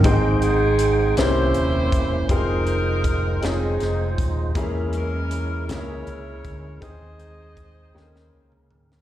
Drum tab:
HH |x-x-x-x-x-x-|x-x-x-x-x-x-|x-x-x-x-x-x-|x-x-x-------|
SD |------o-----|------o-o---|------o-----|------oo---o|
T2 |------------|------------|------------|---------o--|
FT |------------|------------|------------|----------o-|
BD |o---------o-|o---o-----o-|o---------o-|o---o-------|